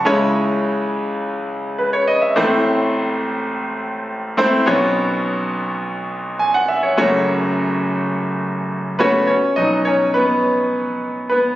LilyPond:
<<
  \new Staff \with { instrumentName = "Grand piano" } { \time 4/4 \key b \mixolydian \tempo 4 = 104 << { a''16 r2 r8. b'16 cis''16 dis''16 e''16~ | e''16 r2. r8. | r2. gis''16 fis''16 e''16 cis''16~ | cis''16 r2. r16 <b b'>8 |
<cis' cis''>8 dis''8 <cis' cis''>8 <b b'>2 <b b'>8 | } \\ { <gis cis' e' cis''>4. r2 r8 | <a c' e' c''>4. r2 <a c' e' c''>8 | <b cis' fis' cis''>4. r2 r8 | <a cis' fis' cis''>4. r2 <a cis' fis' cis''>8 |
r1 | } >> }
  \new Staff \with { instrumentName = "Grand piano" } { \clef bass \time 4/4 \key b \mixolydian <cis, cis>1 | <a,, a,>1 | <b,, b,>1 | <fis,, fis,>1 |
r8 <b, fis dis'>2.~ <b, fis dis'>8 | }
>>